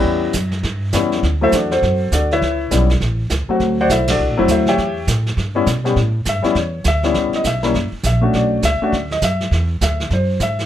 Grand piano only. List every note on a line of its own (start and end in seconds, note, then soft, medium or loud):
0.00 0.32 G3 medium
0.00 0.32 B3 medium
0.00 0.33 C#4 medium
0.00 0.33 E4 medium
0.00 0.33 G4 medium
0.00 0.33 B4 medium
0.93 1.23 G3 medium
0.93 1.23 B3 medium
0.93 1.23 C#4 medium
0.93 1.24 E4 medium
1.41 1.51 F#3 medium
1.41 1.52 A3 medium
1.41 1.52 C4 medium
1.41 1.52 E4 medium
1.41 1.53 A4 medium
1.41 1.53 C5 medium
1.41 1.53 E5 medium
1.54 1.72 D4 medium
1.54 1.71 F#4 soft
1.54 1.70 A4 medium
1.54 1.71 D5 medium
1.72 2.10 C4 soft
1.72 2.10 F#4 medium
1.72 2.09 A4 medium
1.72 2.09 C5 medium
2.13 2.31 D4 soft
2.13 2.31 F#4 medium
2.13 2.31 A4 medium
2.13 2.31 D5 medium
2.33 2.70 E4 medium
2.33 2.70 B4 medium
2.33 2.69 C#5 medium
2.33 2.70 E5 medium
2.71 2.88 G3 medium
2.71 2.88 B3 medium
2.71 2.88 C#4 medium
2.71 2.89 E4 medium
3.49 3.87 F#3 medium
3.49 3.88 A3 medium
3.49 3.88 C4 medium
3.49 3.80 F#4 medium
3.81 3.91 F#4 medium
3.81 3.91 C5 medium
3.81 3.91 D5 medium
3.81 3.90 F#5 loud
3.92 4.09 E4 medium
3.92 4.09 A4 soft
3.92 4.09 C5 soft
3.92 4.08 E5 medium
4.10 4.47 D4 medium
4.10 4.47 F#4 medium
4.10 4.47 A4 medium
4.10 4.47 D5 medium
4.37 4.76 F#3 medium
4.37 4.76 A3 medium
4.37 4.76 C4 medium
4.37 4.50 E4 medium
4.51 4.68 E4 medium
4.51 4.68 A4 soft
4.51 4.68 C5 medium
4.51 4.67 E5 medium
4.69 5.06 G4 medium
4.69 5.06 C#5 medium
4.69 5.06 E5 medium
4.69 5.06 G5 medium
5.55 5.65 G3 medium
5.55 5.66 B3 medium
5.55 5.66 C#4 medium
5.55 5.66 E4 medium
5.84 5.95 G3 medium
5.84 5.95 B3 medium
5.84 5.95 C#4 medium
5.84 5.96 G4 medium
6.29 6.55 E5 medium
6.42 6.54 G3 medium
6.42 6.54 B3 medium
6.42 6.54 C#4 medium
6.42 6.55 E4 medium
6.58 6.85 C#5 medium
6.88 7.31 E5 medium
7.04 7.42 G3 medium
7.04 7.43 B3 medium
7.04 7.43 C#4 medium
7.04 7.43 E4 medium
7.36 7.45 D#5 medium
7.47 7.91 E5 medium
7.63 7.73 G3 medium
7.63 7.73 A#3 medium
7.63 7.74 C#4 medium
7.63 7.74 E4 medium
8.06 8.33 E5 medium
8.21 8.60 A3 medium
8.21 8.61 C#4 medium
8.21 8.61 D4 medium
8.21 8.61 F#4 medium
8.36 8.62 D5 medium
8.65 9.09 E5 medium
8.82 8.92 A3 medium
8.82 8.92 C#4 medium
8.82 8.92 D4 medium
8.82 8.92 F#4 medium
9.12 9.22 D#5 medium
9.24 9.68 E5 medium
9.83 10.10 E5 medium
10.13 10.40 C5 medium
10.43 10.66 E5 medium